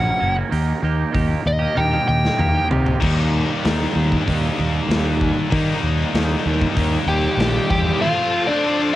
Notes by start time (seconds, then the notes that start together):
Already playing: F#2 C#3 F#5
0.02 F#3 A#3 C#4 F#4
0.18 F#1 F#3 A#3 C#4 F#4
0.34 F#3 A#3 C#4 F#4
0.49 D#2 D#3 A#3 D#4 G4, open hi-hat
0.82 D#2 D#3 A#3 D#4 G4
1.12 D#2 D#3 A#3 D#4 G4, kick, open hi-hat
1.28 A#3 D#4 G4
1.44 D#2 D#5, muted clean electric guitar stroke
1.59 A#3 D#4 G4
1.74 D#2 D#3 A#3 D#4 G4 G5, high tom
1.91 A#3 D#4 G4, high tom
2.08 D#2 G5
2.25 snare
2.37 D#2 D#3 A#3 D#4 G4, mid tom
2.55 A#3 D#4 G4
2.69 C3 D#3 A#3 D#4 G4, floor tom
2.85 A#3 D#4 G4, floor tom
3.01 D#2 D#3 G3 A#3 D#4, kick, crash
3.65 D#2, snare, open hi-hat
3.96 D#2
4.12 kick
4.27 D#2 D#3 G3 A#3 D#4, kick, open hi-hat
4.59 D#2
4.89 D#2, snare, open hi-hat
5.21 kick
5.50 D#3 G3 A#3 D#4, kick, open hi-hat
5.54 D#4
5.83 D#2
6.14 D#2, snare, open hi-hat
6.46 D#2
6.61 kick
6.76 D#2 D#3 G3 A#3 D#4, kick, open hi-hat
7.06 D#2 G4 G5
7.37 A#1, snare, open hi-hat
7.70 E2 G4 G5, kick
7.99 F3 A3 F4 A4 C5 F5 A5 C6
8.04 C4 F4
8.16 A3 C4 F4
8.47 D4 D5
8.63 F3 A3 C4 F4
8.79 A3 C4 F4